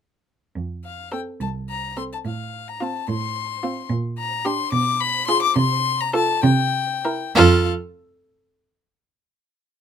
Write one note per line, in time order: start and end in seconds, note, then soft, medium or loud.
0.55 1.24 F2 medium
0.85 1.11 F5 soft
1.12 1.34 C4 soft
1.12 1.33 A4 soft
1.12 1.20 G5 medium
1.40 2.08 C2 soft
1.40 1.49 A5 medium
1.70 1.97 A#5 medium
1.97 2.18 C4 soft
1.97 2.18 A4 soft
1.97 2.03 C6 medium
2.13 2.18 A5 medium
2.25 2.92 A2 medium
2.25 2.70 F5 medium
2.68 2.84 A#5 medium
2.81 3.02 C4 soft
2.81 3.02 F4 medium
2.81 3.09 A5 medium
3.08 3.74 A2 medium
3.08 3.90 C6 medium
3.63 3.84 C4 medium
3.63 3.84 F4 medium
3.90 4.56 A#2 medium
4.18 4.47 A#5 medium
4.45 4.66 D4 medium
4.45 4.66 G4 medium
4.45 4.72 C6 medium
4.72 5.40 B2 medium
4.72 5.02 D6 loud
5.00 5.27 B5 loud
5.28 5.50 F4 medium
5.28 5.50 G#4 medium
5.28 5.42 C6 loud
5.42 5.56 D6 loud
5.56 6.26 C3 medium
5.56 6.02 C6 loud
6.00 6.14 A#5 loud
6.14 6.36 F4 medium
6.14 6.36 A4 medium
6.14 6.43 A5 loud
6.43 7.18 C3 loud
6.43 7.34 G5 loud
7.05 7.28 E4 medium
7.05 7.28 A#4 medium
7.35 7.68 F2 medium
7.35 7.68 F4 medium
7.35 7.68 A4 medium
7.35 7.68 F5 medium